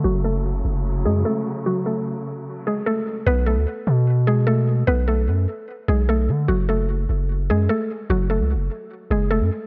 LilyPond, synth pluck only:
\new Staff \with { instrumentName = "Synth pluck" } { \time 4/4 \key fis \minor \tempo 4 = 149 <fis fis'>8 <a a'>2 <gis gis'>8 <a a'>4 | <fis fis'>8 <a a'>2 <gis gis'>8 <a a'>4 | <b b'>8 <a a'>2 <gis gis'>8 <a a'>4 | <b b'>8 <a a'>2 <gis gis'>8 <a a'>4 |
<fis fis'>8 <a a'>2 <gis gis'>8 <a a'>4 | <fis fis'>8 <a a'>2 <gis gis'>8 <a a'>4 | }